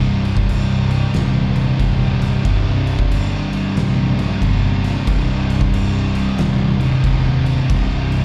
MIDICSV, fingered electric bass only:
0, 0, Header, 1, 2, 480
1, 0, Start_track
1, 0, Key_signature, -3, "minor"
1, 0, Tempo, 655738
1, 1791, Time_signature, 4, 2, 24, 8
1, 6036, End_track
2, 0, Start_track
2, 0, Title_t, "Fingered electric bass"
2, 0, Program_c, 0, 33
2, 0, Note_on_c, 0, 24, 98
2, 276, Note_off_c, 0, 24, 0
2, 357, Note_on_c, 0, 24, 100
2, 755, Note_off_c, 0, 24, 0
2, 837, Note_on_c, 0, 27, 102
2, 1235, Note_off_c, 0, 27, 0
2, 1313, Note_on_c, 0, 27, 101
2, 1712, Note_off_c, 0, 27, 0
2, 1797, Note_on_c, 0, 24, 110
2, 2194, Note_off_c, 0, 24, 0
2, 2273, Note_on_c, 0, 31, 98
2, 2672, Note_off_c, 0, 31, 0
2, 2750, Note_on_c, 0, 34, 103
2, 3150, Note_off_c, 0, 34, 0
2, 3235, Note_on_c, 0, 31, 98
2, 3633, Note_off_c, 0, 31, 0
2, 3713, Note_on_c, 0, 24, 102
2, 4112, Note_off_c, 0, 24, 0
2, 4194, Note_on_c, 0, 24, 100
2, 4593, Note_off_c, 0, 24, 0
2, 4673, Note_on_c, 0, 27, 102
2, 5073, Note_off_c, 0, 27, 0
2, 5150, Note_on_c, 0, 27, 98
2, 5552, Note_off_c, 0, 27, 0
2, 5633, Note_on_c, 0, 24, 111
2, 6035, Note_off_c, 0, 24, 0
2, 6036, End_track
0, 0, End_of_file